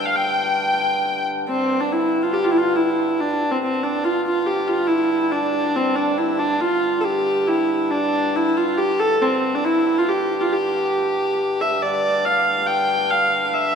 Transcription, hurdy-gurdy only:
0.06 0.17 F5 medium
0.16 1.25 G5 medium
1.48 1.81 C4 medium
1.81 1.92 D4 medium
1.92 2.23 E4 medium
2.23 2.34 F4 medium
2.34 2.45 G4 medium
2.44 2.52 F4 medium
2.51 2.59 E4 medium
2.57 2.77 F4 medium
2.76 3.20 E4 medium
3.20 3.52 D4 medium
3.52 3.62 C4 medium
3.62 3.84 C4 medium
3.84 4.06 D4 medium
4.04 4.25 F4 medium
4.25 4.47 F4 medium
4.47 4.68 G4 medium
4.68 4.91 F4 medium
4.87 5.33 E4 medium
5.32 5.77 D4 medium
5.76 5.99 C4 medium
5.96 6.20 D4 medium
6.18 6.42 E4 medium
6.39 6.63 D4 medium
6.61 7.00 F4 medium
7.00 7.49 G4 medium
7.00 7.08 A4 medium
7.47 7.92 E4 medium
7.91 8.36 D4 medium
8.36 8.57 E4 medium
8.57 8.79 F4 medium
8.78 9.00 G4 medium
9.00 9.22 A4 loud
9.22 9.55 C4 medium
9.55 9.66 D4 medium
9.65 9.98 E4 medium
9.98 10.09 F4 medium
10.08 10.41 G4 medium
10.41 10.52 F4 medium
10.52 11.61 G4 medium
11.61 11.82 E5 medium
11.82 12.25 D5 medium
12.25 12.67 F5 medium
12.67 13.11 G5 medium
13.11 13.45 F5 medium
13.45 13.53 F5 medium
13.53 13.75 E5 medium

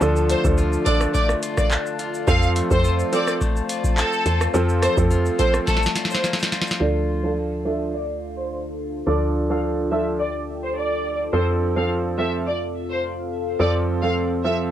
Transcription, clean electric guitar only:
0.00 2.27 D3 medium
0.00 0.29 A3 medium
0.00 0.85 D4 medium
0.00 0.57 F4 medium
0.30 1.14 A3 medium
0.58 1.42 F4 medium
0.86 1.70 D4 medium
1.14 2.56 A3 medium
1.43 1.99 F4 medium
1.71 2.34 D4 medium
1.99 2.84 F4 medium
2.28 4.54 F3 medium
2.56 3.41 A3 medium
2.84 3.69 F4 medium
3.13 3.96 C4 medium
3.41 4.82 A3 medium
3.69 4.25 F4 medium
3.98 5.38 C4 medium
4.26 5.10 F4 medium
4.54 7.37 F3 medium
4.82 5.67 A3 medium
5.11 5.95 F4 medium
5.39 6.24 C4 medium
5.67 7.37 A3 medium
5.96 6.52 F4 medium
6.24 6.39 A#3 medium
6.39 6.87 C4 medium
6.52 7.36 F4 medium

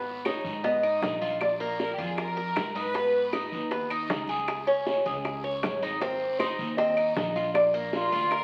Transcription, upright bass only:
0.00 0.39 G#1 medium
0.44 0.98 G#2 loud
1.02 1.92 A#1 medium
1.98 2.52 F2 loud
2.56 3.46 G#2 medium
3.52 4.06 D#2 loud
4.10 5.00 C#2 medium
5.06 5.59 C#2 loud
5.63 6.53 G#1 medium
6.59 7.12 D#2 loud
7.16 8.06 A#1 medium
8.12 8.44 D2 loud

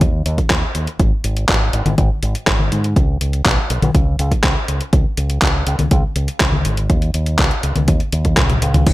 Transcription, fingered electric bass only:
0.01 0.23 D#2 medium
0.26 0.37 D#2 medium
0.50 0.61 D#2 loud
0.75 0.86 D#2 medium
1.00 1.10 G#1 medium
1.24 1.46 G#1 medium
1.73 1.84 G#1 loud
1.86 1.96 G#1 medium
1.98 2.09 G#1 medium
2.23 2.33 G#1 medium
2.47 2.69 G#1 medium
2.72 2.93 G#2 medium
2.96 3.18 C#2 loud
3.21 3.43 C#2 medium
3.45 3.56 B1 medium
3.70 3.81 B1 medium
3.82 3.93 B1 medium
3.95 4.16 C#2 medium
4.19 4.30 C#2 loud
4.44 4.55 C#2 loud
4.68 4.79 C#2 medium
4.93 5.04 C#2 loud
5.18 5.39 C#2 medium
5.42 5.64 C#2 medium
5.67 5.78 C#2 loud
5.79 5.90 C#2 medium
5.91 6.02 C#2 medium
6.16 6.27 C#2 medium
6.40 6.62 C#2 medium
6.65 6.87 G#1 medium
6.90 7.11 D#2 medium
7.14 7.36 D#2 medium
7.39 7.50 C#2 medium
7.63 7.74 C#2 medium
7.76 7.87 C#2 medium
7.88 7.99 D#2 medium
8.13 8.34 D#2 medium
8.37 8.59 C#2 medium
8.62 8.83 C#2 medium
8.87 8.93 G#1 loud

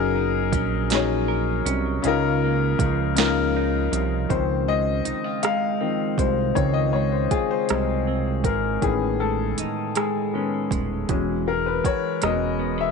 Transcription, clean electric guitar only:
0.00 2.04 F#3 medium
0.00 0.15 F#4 medium
0.00 1.28 A#4 medium
0.16 0.91 D#4 medium
0.54 1.65 C#4 medium
0.91 2.84 D#4 medium
1.28 4.71 A#4 medium
1.66 2.43 C#4 medium
2.05 4.28 C#3 medium
2.44 3.17 A#3 medium
2.81 3.91 F3 medium
3.18 4.38 A#3 medium
3.56 4.39 D#4 medium
3.92 4.68 F3 medium
4.29 6.54 C#3 medium
4.68 5.43 G#3 medium
5.05 5.24 D#4 medium
5.24 7.30 F4 soft
5.43 6.18 G#3 medium
5.81 8.06 C4 medium
6.19 6.93 G#3 medium
6.55 8.82 C#3 medium
6.94 7.70 G#3 medium
7.31 8.90 F4 medium
7.70 8.46 G#3 medium
8.07 8.90 C4 medium
8.46 9.20 G#3 soft
8.82 11.09 A2 medium
9.20 9.96 G#3 medium
9.59 11.17 D#4 medium
9.96 10.72 G#3 medium
10.35 12.59 C#4 medium
10.72 11.47 G#3 medium
11.09 12.91 E3 medium
11.48 12.21 G#3 medium
11.86 12.91 F#4 medium
12.22 12.91 G#3 medium
12.59 12.78 B3 medium
12.78 12.91 C#4 soft

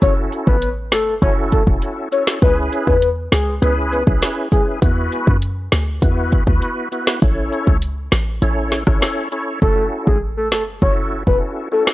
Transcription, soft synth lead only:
0.02 0.13 C#5 loud
0.47 0.69 B4 medium
0.92 1.14 A4 medium
1.22 1.33 C#5 medium
1.52 1.63 A4 medium
2.12 2.23 C#5 medium
2.42 2.53 B4 loud
2.87 3.09 B4 medium
3.32 3.54 G#4 medium
3.62 3.73 B4 medium
3.92 4.03 B4 medium
4.52 4.63 G#4 medium
9.62 9.84 A4 loud
10.07 10.18 G#4 medium
10.37 10.48 A4 medium
10.52 10.63 A4 medium
10.82 10.93 C#5 medium
11.27 11.38 B4 medium
11.72 11.83 A4 medium

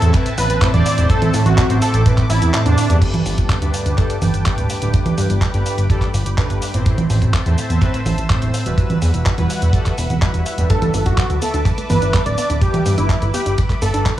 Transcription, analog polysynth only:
0.00 0.11 A2 loud
0.00 0.11 A3 medium
0.00 0.11 C4 loud
0.00 0.11 E4 medium
0.00 0.11 C5 loud
0.14 0.33 A2 loud
0.14 0.33 A3 medium
0.14 0.33 C4 medium
0.14 0.33 E4 medium
0.14 0.33 B4 loud
0.62 0.95 A2 medium
0.62 0.95 A3 medium
0.62 0.95 C4 medium
0.62 0.95 E4 medium
0.62 0.95 C5 loud
0.98 1.31 A2 medium
0.98 1.31 A3 medium
0.98 1.31 C4 medium
0.98 1.31 E4 medium
0.98 1.31 C5 loud
1.34 1.67 A2 medium
1.34 1.67 A3 medium
1.34 1.67 C4 medium
1.34 1.67 E4 medium
1.34 1.67 C5 medium
1.70 2.03 A2 loud
1.70 2.03 A3 medium
1.70 2.03 C4 medium
1.70 2.03 E4 medium
1.70 2.03 C5 loud
2.06 2.25 A2 loud
2.06 2.25 A3 medium
2.06 2.25 C4 medium
2.06 2.25 E4 medium
2.06 2.25 B4 loud
2.54 2.87 A2 medium
2.54 2.87 A3 medium
2.54 2.87 C4 medium
2.54 2.87 E4 medium
2.54 2.87 C5 loud
2.90 3.23 G2 loud
2.90 3.23 A3 medium
2.90 3.23 D4 medium
2.90 3.23 G4 medium
2.90 3.23 B4 loud
3.26 3.59 G2 medium
3.26 3.59 A3 medium
3.26 3.59 D4 medium
3.26 3.59 G4 medium
3.26 3.59 B4 medium
3.62 3.95 G2 loud
3.62 3.95 A3 medium
3.62 3.95 D4 medium
3.62 3.95 G4 medium
3.62 3.95 B4 loud
3.98 4.17 G2 loud
3.98 4.17 A3 medium
3.98 4.17 D4 medium
3.98 4.17 G4 medium
3.98 4.17 A4 loud
4.46 4.79 G2 medium
4.46 4.79 A3 medium
4.46 4.79 D4 medium
4.46 4.79 G4 medium
4.46 4.79 B4 loud
4.82 5.15 G2 medium
4.82 5.15 A3 medium
4.82 5.15 D4 medium
4.82 5.15 G4 medium
4.82 5.15 B4 loud
5.18 5.51 G2 medium
5.18 5.51 A3 medium
5.18 5.51 D4 medium
5.18 5.51 G4 medium
5.18 5.51 B4 medium
5.54 5.87 G2 medium
5.54 5.87 A3 medium
5.54 5.87 D4 medium
5.54 5.87 G4 medium
5.54 5.87 B4 loud
5.90 6.09 G2 medium
5.90 6.09 A3 medium
5.90 6.09 D4 medium
5.90 6.09 G4 medium
5.90 6.09 A4 loud
6.38 6.71 G2 medium
6.38 6.71 A3 medium
6.38 6.71 D4 medium
6.38 6.71 G4 medium
6.38 6.71 B4 loud
6.74 7.07 A2 medium
6.74 7.07 A3 medium
6.74 7.07 C4 medium
6.74 7.07 E4 medium
6.74 7.07 C5 loud
7.10 7.43 A2 medium
7.10 7.43 A3 medium
7.10 7.43 C4 medium
7.10 7.43 E4 medium
7.10 7.43 C5 medium
7.46 7.79 A2 medium
7.46 7.79 A3 medium
7.46 7.79 C4 medium
7.46 7.79 E4 medium
7.46 7.79 C5 loud
7.82 8.01 A2 loud
7.82 8.01 A3 medium
7.82 8.01 C4 medium
7.82 8.01 E4 medium
7.82 8.01 B4 loud
8.30 8.63 A2 medium
8.30 8.63 A3 medium
8.30 8.63 C4 medium
8.30 8.63 E4 medium
8.30 8.63 C5 loud
8.66 8.99 G3 medium
8.66 8.99 E4 medium
8.66 8.99 F#4 medium
8.66 8.99 B4 loud
9.02 9.35 G3 medium
9.02 9.35 E4 medium
9.02 9.35 F#4 medium
9.02 9.35 B4 medium
9.38 9.71 G3 medium
9.38 9.71 E4 medium
9.38 9.71 F#4 medium
9.38 9.71 B4 loud
9.74 9.93 G3 loud
9.74 9.93 E4 medium
9.74 9.93 F#4 medium
9.74 9.93 A4 loud
10.22 10.55 G3 medium
10.22 10.55 E4 medium
10.22 10.55 F#4 medium
10.22 10.55 B4 loud
10.58 10.91 G2 medium
10.58 10.91 A3 medium
10.58 10.91 D4 medium
10.58 10.91 G4 medium
10.58 10.91 B4 loud

